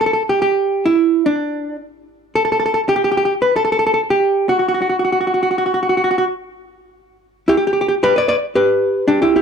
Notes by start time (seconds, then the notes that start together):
0.01 A4
0.06 A4
0.13 A4
0.29 G4
0.42 G4
0.86 E4
1.26 D4
2.35 A4
2.45 A4
2.52 A4
2.60 A4
2.66 A4
2.74 A4
2.89 G4
2.96 G4
3.04 G4
3.12 G4
3.17 G4
3.25 G4
3.42 B4
3.56 A4
3.65 A4
3.72 A4
3.79 A4
3.87 A4
3.94 A4
4.10 G4
4.49 F#4
4.59 F#4
4.68 F#4
4.74 F#4
4.82 F#4
4.89 F#4
4.99 F#4
5.05 F#4
5.12 F#4
5.21 F#4
5.27 F#4
5.34 F#4
5.43 F#4
5.51 F#4
5.58 F#4
5.66 F#4
5.74 F#4
5.83 F#4
5.89 F#4
5.97 F#4
6.04 F#4
6.11 F#4
6.18 F#4
7.48 E4 G4
7.57 G4
7.67 G4
7.73 G4
7.81 G4
7.88 G4
8.03 G4 B4
8.16 B4 D5
8.28 B4 D5
8.55 G4 B4
9.08 D4 G4
9.22 E4 G4
9.36 E4 G4